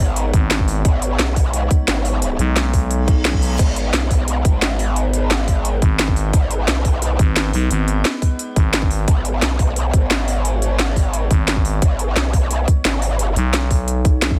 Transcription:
Already playing: wobble bass G#1, synth drone G#3 B3 D#4 C#5
0.16 closed hi-hat
0.33 fm bass G#1, kick, closed hi-hat
0.51 snare, closed hi-hat
0.59 kick
0.68 open hi-hat
0.85 wobble bass G#1, kick, closed hi-hat
1.02 closed hi-hat
1.19 wobble bass B1, snare, closed hi-hat
1.36 kick, open hi-hat
1.54 closed hi-hat
1.71 kick, closed hi-hat
1.88 wobble bass G#1, snare, closed hi-hat
2.05 open hi-hat
2.22 closed hi-hat
2.39 fm bass B1, closed hi-hat
2.56 snare, closed hi-hat
2.74 kick, open hi-hat
2.91 closed hi-hat, reverse cymbal
3.08 kick, closed hi-hat
3.25 snare, closed hi-hat
3.33 kick
3.42 open hi-hat
3.59 wobble bass G#1, synth drone B4, kick, closed hi-hat, crash
3.76 closed hi-hat
3.94 wobble bass B1, snare, closed hi-hat
4.11 kick, open hi-hat
4.28 closed hi-hat
4.45 wobble bass G#1, kick, closed hi-hat
4.62 snare, closed hi-hat
4.79 open hi-hat
4.96 closed hi-hat
5.13 closed hi-hat
5.31 snare, closed hi-hat
5.48 kick, open hi-hat
5.65 closed hi-hat
5.82 fm bass G#1, kick, closed hi-hat
5.99 snare, closed hi-hat
6.08 kick
6.16 open hi-hat
6.33 wobble bass G#1, kick, closed hi-hat
6.51 closed hi-hat
6.68 wobble bass B1, snare, closed hi-hat
6.85 kick, open hi-hat
7.02 closed hi-hat
7.19 fm bass G#1, kick, closed hi-hat
7.36 snare, closed hi-hat
7.53 fm bass B1, open hi-hat
7.71 fm bass G#1, closed hi-hat
7.88 closed hi-hat
8.05 snare, closed hi-hat
8.22 kick, open hi-hat
8.39 closed hi-hat
8.56 fm bass G#1, kick, closed hi-hat
8.73 snare, closed hi-hat
8.82 kick
8.91 open hi-hat
9.08 wobble bass G#1, synth drone C#5, kick, closed hi-hat
9.25 closed hi-hat
9.42 wobble bass B1, snare, closed hi-hat
9.59 kick, open hi-hat
9.76 closed hi-hat
9.93 wobble bass G#1, kick, closed hi-hat
10.11 snare, closed hi-hat
10.28 open hi-hat
10.45 closed hi-hat
10.62 closed hi-hat
10.79 snare, closed hi-hat
10.96 kick, open hi-hat
11.14 closed hi-hat
11.31 fm bass G#1, kick, closed hi-hat
11.48 snare, closed hi-hat
11.56 kick
11.65 open hi-hat
11.82 wobble bass G#1, kick, closed hi-hat
11.99 closed hi-hat
12.16 wobble bass B1, snare, closed hi-hat
12.33 kick, open hi-hat
12.51 closed hi-hat
12.68 kick, closed hi-hat
12.85 wobble bass G#1, snare, closed hi-hat
13.02 open hi-hat
13.19 closed hi-hat
13.36 fm bass B1, closed hi-hat
13.54 snare, closed hi-hat
13.71 kick, open hi-hat
13.88 closed hi-hat
14.05 kick, closed hi-hat
14.22 snare, closed hi-hat
14.31 kick

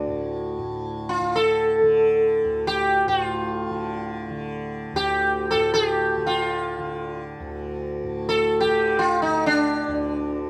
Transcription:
Already playing: tanpura D2 D3
0.07 tanpura A2
0.58 tanpura A2
1.09 sitar F4
1.19 tanpura D3
1.36 sitar A4
1.82 tanpura D3
2.44 tanpura D2
2.67 sitar G4
3.07 tanpura A2, sitar F#4
3.23 sitar F4
3.69 tanpura D3
4.30 tanpura D3
4.93 tanpura D2, sitar G4
5.51 tanpura A2, sitar A4
5.74 sitar G4
6.17 tanpura D3
6.27 sitar F4
6.79 tanpura D3
7.40 tanpura D2
8.03 tanpura A2
8.29 sitar A4
8.60 sitar G4
8.65 tanpura D3
8.99 sitar F4
9.22 sitar D#4
9.27 tanpura D3
9.46 sitar D4
9.88 tanpura D2

